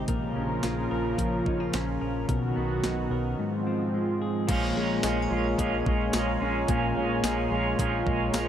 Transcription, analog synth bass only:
0, 0, Header, 1, 2, 480
1, 0, Start_track
1, 0, Key_signature, -5, "minor"
1, 0, Tempo, 550459
1, 72, Time_signature, 4, 2, 24, 8
1, 7398, End_track
2, 0, Start_track
2, 0, Title_t, "Analog synth bass"
2, 0, Program_c, 0, 38
2, 72, Note_on_c, 0, 34, 94
2, 283, Note_off_c, 0, 34, 0
2, 316, Note_on_c, 0, 34, 90
2, 526, Note_off_c, 0, 34, 0
2, 558, Note_on_c, 0, 34, 97
2, 766, Note_off_c, 0, 34, 0
2, 799, Note_on_c, 0, 34, 88
2, 1007, Note_off_c, 0, 34, 0
2, 1033, Note_on_c, 0, 34, 97
2, 1244, Note_off_c, 0, 34, 0
2, 1276, Note_on_c, 0, 34, 99
2, 1486, Note_off_c, 0, 34, 0
2, 1521, Note_on_c, 0, 34, 93
2, 1728, Note_off_c, 0, 34, 0
2, 1764, Note_on_c, 0, 34, 91
2, 1970, Note_off_c, 0, 34, 0
2, 1995, Note_on_c, 0, 35, 109
2, 2205, Note_off_c, 0, 35, 0
2, 2245, Note_on_c, 0, 35, 92
2, 2450, Note_off_c, 0, 35, 0
2, 2480, Note_on_c, 0, 35, 99
2, 2688, Note_off_c, 0, 35, 0
2, 2713, Note_on_c, 0, 35, 96
2, 2924, Note_off_c, 0, 35, 0
2, 3914, Note_on_c, 0, 34, 110
2, 4125, Note_off_c, 0, 34, 0
2, 4152, Note_on_c, 0, 34, 94
2, 4363, Note_off_c, 0, 34, 0
2, 4393, Note_on_c, 0, 34, 105
2, 4604, Note_off_c, 0, 34, 0
2, 4632, Note_on_c, 0, 34, 94
2, 4843, Note_off_c, 0, 34, 0
2, 4872, Note_on_c, 0, 34, 97
2, 5083, Note_off_c, 0, 34, 0
2, 5113, Note_on_c, 0, 34, 94
2, 5324, Note_off_c, 0, 34, 0
2, 5356, Note_on_c, 0, 34, 99
2, 5565, Note_off_c, 0, 34, 0
2, 5597, Note_on_c, 0, 34, 107
2, 5806, Note_off_c, 0, 34, 0
2, 5834, Note_on_c, 0, 34, 101
2, 6045, Note_off_c, 0, 34, 0
2, 6074, Note_on_c, 0, 34, 90
2, 6284, Note_off_c, 0, 34, 0
2, 6310, Note_on_c, 0, 34, 107
2, 6522, Note_off_c, 0, 34, 0
2, 6551, Note_on_c, 0, 34, 104
2, 6763, Note_off_c, 0, 34, 0
2, 6795, Note_on_c, 0, 34, 100
2, 7005, Note_off_c, 0, 34, 0
2, 7035, Note_on_c, 0, 34, 103
2, 7245, Note_off_c, 0, 34, 0
2, 7275, Note_on_c, 0, 34, 99
2, 7398, Note_off_c, 0, 34, 0
2, 7398, End_track
0, 0, End_of_file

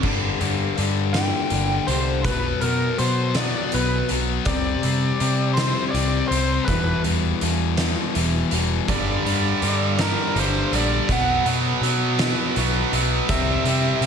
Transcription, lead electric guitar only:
0, 0, Header, 1, 2, 480
1, 0, Start_track
1, 0, Tempo, 736196
1, 27, Time_signature, 6, 3, 24, 8
1, 9169, End_track
2, 0, Start_track
2, 0, Title_t, "Lead electric guitar"
2, 0, Program_c, 0, 29
2, 737, Note_on_c, 0, 79, 88
2, 1219, Note_on_c, 0, 72, 81
2, 1240, Note_off_c, 0, 79, 0
2, 1464, Note_off_c, 0, 72, 0
2, 1467, Note_on_c, 0, 71, 84
2, 1693, Note_off_c, 0, 71, 0
2, 1705, Note_on_c, 0, 70, 84
2, 1948, Note_off_c, 0, 70, 0
2, 1950, Note_on_c, 0, 72, 96
2, 2194, Note_on_c, 0, 74, 78
2, 2200, Note_off_c, 0, 72, 0
2, 2438, Note_on_c, 0, 71, 75
2, 2442, Note_off_c, 0, 74, 0
2, 2660, Note_off_c, 0, 71, 0
2, 2909, Note_on_c, 0, 74, 95
2, 3606, Note_off_c, 0, 74, 0
2, 3609, Note_on_c, 0, 72, 84
2, 3803, Note_off_c, 0, 72, 0
2, 3838, Note_on_c, 0, 73, 56
2, 3850, Note_on_c, 0, 74, 89
2, 3880, Note_off_c, 0, 73, 0
2, 4093, Note_off_c, 0, 74, 0
2, 4095, Note_on_c, 0, 72, 74
2, 4334, Note_off_c, 0, 72, 0
2, 4337, Note_on_c, 0, 71, 70
2, 4569, Note_off_c, 0, 71, 0
2, 5800, Note_on_c, 0, 74, 73
2, 6522, Note_on_c, 0, 70, 76
2, 6539, Note_off_c, 0, 74, 0
2, 6766, Note_off_c, 0, 70, 0
2, 6776, Note_on_c, 0, 72, 85
2, 6989, Note_off_c, 0, 72, 0
2, 7010, Note_on_c, 0, 74, 87
2, 7226, Note_off_c, 0, 74, 0
2, 7250, Note_on_c, 0, 78, 86
2, 7465, Note_off_c, 0, 78, 0
2, 8670, Note_on_c, 0, 76, 78
2, 9169, Note_off_c, 0, 76, 0
2, 9169, End_track
0, 0, End_of_file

